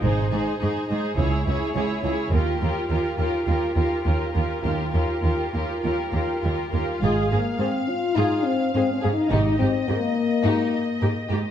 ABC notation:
X:1
M:4/4
L:1/8
Q:1/4=105
K:Ab
V:1 name="Violin section"
c c c c d d d d | B B B B B B B B | B B B B B B B B | f8 |
e8 |]
V:2 name="Violin section"
A A A A A A A A | G G G G G G G G | G G G G G G G G | F A c z F z c A |
E G B z E z B G |]
V:3 name="Viola section"
E E E E _F F F F | F F F F F F F F | F F F F F F F F | A A A z A z A A |
G G G z G z G G |]
V:4 name="French horn section"
z8 | z8 | z8 | A, B, C F E C (3C D E |
E C B,4- B, z |]
V:5 name="Cello section" clef=bass
A,, A,, A,, A,, D,, D,, D,, D,, | E,, E,, E,, E,, E,, E,, E,, E,, | E,, E,, E,, E,, E,, E,, E,, E,, | A,, A,, A,, z A,, z A,, A,, |
A,, A,, A,, z A,, z A,, A,, |]
V:6 name="Double bass section" clef=bass
A,,, z3 D,, z3 | E,, z6 z | E,, z6 z | A,,, z6 z |
A,,, z6 z |]